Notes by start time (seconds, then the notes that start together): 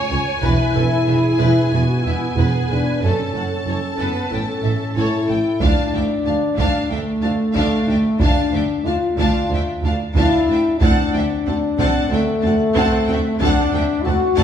Already playing: C#5 G#5
0.11 C#2 C#5 G#5
0.42 E1 E2 E4 B4, taiko
0.74 E1 E2 A4 B4 G#5
1.06 E1 E2 G#4 B4 E5
1.39 E1 E2 B4
1.72 E1 E2 B3 F#4 B4 G#5
2.04 E1 E2 E4 B4 E5
2.36 E1 E2 G#4 B4
2.69 E1 E2 D4 B4 G#5
3.01 F#1 F#2 C#4 A4 A5
3.34 F#1 F#2 A4 F#5
3.66 F#1 F#2 A4 C#5
3.98 F#1 F#2 B3 A4 B4
4.30 A1 A2 C#4 A4 G5
4.63 A1 A2 A4 E5
4.95 A1 A2 E4 A4 C#5 A5
5.28 A1 A2 A4 G5
5.60 D2 D4 F5 A5, taiko
5.92 D2 D4 E5 G5
6.24 D2 D4 F5 A5
6.56 D2 D4 F5 A5, taiko
6.89 D2 A3 D4 E5 G5
7.22 D2 D4 F5 A5
7.54 D2 D4 F5 A5, taiko
7.87 D2 D4 E5 G5
8.19 D2 D4 F5 A5, taiko
8.51 D2 D4 E5
8.55 G5
8.84 D2 D4 F4 F5 A5
9.17 D2 D4 F5 A5, taiko
9.50 D2 D4 E5
9.54 G5
9.82 D2 D4 A5
9.86 F5
10.15 D2 D4 E4 F5 A5, taiko
10.48 D2 D4 E5 G5
10.78 D2 C4 D4 A5, taiko
10.83 F#5
11.13 D2 C4 E5 G5
11.46 D2 C4 F#5 A5
11.78 D2 C4 F#5 A5, taiko
12.10 D2 A3 C4 E5 G5
12.43 D2 C4 F#5 A5
12.75 D2 C4 F#5 A5, taiko
13.06 D2 C4 G5
13.11 E5
13.39 D2 C4 D4 F#5 A5, taiko
13.72 D2 C4 E5 G5
14.03 D2 C4 F#4 A5
14.07 F#5
14.37 D2 C4 F#5 A5, taiko